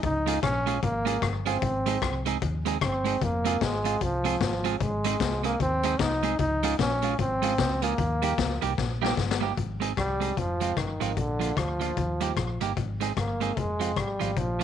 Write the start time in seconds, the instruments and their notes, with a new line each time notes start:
0.03 fingered electric bass C#2, trombone D#4, kick, closed hi-hat
0.26 clean electric guitar G#3 C#4 F4 G#4, closed hi-hat
0.42 fingered electric bass A#1, trombone C#4, muted clean electric guitar stroke, kick, cross-stick, closed hi-hat
0.66 clean electric guitar G#3 C#4 F4 G#4, closed hi-hat
0.83 fingered electric bass G#1, trombone A#3, kick, closed hi-hat
1.05 clean electric guitar G#3 C#4 F4 G#4, closed hi-hat
1.22 fingered electric bass G1, kick, cross-stick, closed hi-hat
1.46 clean electric guitar G#3 C#4 F4 G#4, trombone C4, closed hi-hat
1.62 fingered electric bass G#1, kick, closed hi-hat
1.86 clean electric guitar G#3 C4 D#4 G#4, closed hi-hat
2.02 fingered electric bass C2, muted clean electric guitar stroke, kick, cross-stick, closed hi-hat
2.26 clean electric guitar G#3 C4 D#4 G#4, closed hi-hat
2.42 fingered electric bass D#2, kick, closed hi-hat
2.66 clean electric guitar G#3 C4 D#4 G#4, closed hi-hat
2.81 fingered electric bass G1, trombone C4, kick, cross-stick, closed hi-hat
3.05 clean electric guitar G#3 C4 D#4 G#4, closed hi-hat
3.22 fingered electric bass F1, trombone A#3, kick, closed hi-hat
3.45 clean electric guitar G#3 C4 F4 G#4, closed hi-hat
3.61 fingered electric bass G#1, trombone G#3, muted clean electric guitar stroke, kick, snare, closed hi-hat
3.85 clean electric guitar G#3 C4 F4 G#4, closed hi-hat
4.01 fingered electric bass C2, trombone F3, kick, closed hi-hat
4.24 clean electric guitar G#3 C4 F4 G#4, closed hi-hat
4.41 fingered electric bass G#1, trombone F3, kick, snare, closed hi-hat
4.64 clean electric guitar G#3 C4 F4 G#4, closed hi-hat
4.80 fingered electric bass G#1, trombone G#3, kick, closed hi-hat
5.04 clean electric guitar G#3 C4 D#4 G#4, closed hi-hat
5.20 fingered electric bass C2, muted clean electric guitar stroke, kick, snare, closed hi-hat
5.44 clean electric guitar G#3 C4 D#4 G#4, trombone A#3, closed hi-hat
5.60 fingered electric bass D#2, trombone C4, kick, closed hi-hat
5.83 clean electric guitar G#3 C4 D#4 G#4, closed hi-hat
5.99 fingered electric bass C2, trombone D#4, kick, snare, closed hi-hat
6.23 clean electric guitar G#3 C4 D#4 G#4, closed hi-hat
6.39 fingered electric bass C#2, trombone D#4, kick, closed hi-hat
6.63 clean electric guitar G#3 C#4 F4 G#4, closed hi-hat
6.79 fingered electric bass A#1, trombone C#4, muted clean electric guitar stroke, kick, snare, closed hi-hat
7.02 clean electric guitar G#3 C#4 F4 G#4, closed hi-hat
7.18 fingered electric bass G#1, trombone C4, kick, closed hi-hat
7.42 clean electric guitar G#3 C#4 F4 G#4, closed hi-hat
7.58 fingered electric bass C#2, kick, snare, closed hi-hat
7.82 clean electric guitar G#3 C#4 F4 G#4, trombone A#3, closed hi-hat
7.98 fingered electric bass D#2, kick, closed hi-hat
8.22 clean electric guitar G3 A#3 D#4 G4, closed hi-hat
8.38 fingered electric bass C#2, muted clean electric guitar stroke, kick, snare, closed hi-hat
8.62 fingered electric bass C2, clean electric guitar G3 A#3 D#4 G4, closed hi-hat
8.78 fingered electric bass A#1, kick, snare
9.02 clean electric guitar G3 A#3 D#4 G4, snare
9.17 fingered electric bass G1, kick, snare
9.31 snare
9.41 clean electric guitar G3 A#3 D#4 G4
9.57 fingered electric bass G#1, kick, closed hi-hat
9.80 clean electric guitar G#3 C4 D#4 G#4, closed hi-hat
9.97 fingered electric bass C2, trombone G3, muted clean electric guitar stroke, kick, cross-stick, closed hi-hat
10.20 clean electric guitar G#3 C4 D#4 G#4, closed hi-hat
10.37 fingered electric bass F1, trombone F3, kick, closed hi-hat
10.61 clean electric guitar F3 G#3 C4 F4, closed hi-hat
10.77 fingered electric bass G1, trombone D#3, kick, cross-stick, closed hi-hat
11.00 fingered electric bass G#1, clean electric guitar F3 G#3 C4 F4, closed hi-hat
11.17 fingered electric bass A#1, trombone D3, kick, closed hi-hat
11.40 clean electric guitar F3 A#3 D4 F4, closed hi-hat
11.57 fingered electric bass D2, trombone F3, kick, cross-stick, closed hi-hat
11.80 clean electric guitar F3 A#3 D4 F4, closed hi-hat
11.97 fingered electric bass D#2, kick, closed hi-hat
12.21 clean electric guitar G3 A#3 D#4 G4, closed hi-hat
12.37 fingered electric bass A#1, kick, cross-stick, closed hi-hat
12.61 fingered electric bass G1, clean electric guitar G3 A#3 D#4 G4, closed hi-hat
12.77 fingered electric bass G#1, kick, closed hi-hat
13.01 clean electric guitar G#3 C4 D#4 G#4, closed hi-hat
13.17 fingered electric bass G1, trombone A#3, muted clean electric guitar stroke, kick, cross-stick, closed hi-hat
13.41 clean electric guitar G#3 C4 D#4 G#4, closed hi-hat
13.57 fingered electric bass F1, trombone G#3, kick, closed hi-hat
13.80 clean electric guitar F3 G#3 C4 F4, closed hi-hat
13.96 fingered electric bass G#1, trombone G3, kick, cross-stick, closed hi-hat
14.20 fingered electric bass G#1, clean electric guitar F3 G#3 C4 F4, closed hi-hat
14.37 fingered electric bass A#1, trombone F3, kick, closed hi-hat
14.59 clean electric guitar F3 A#3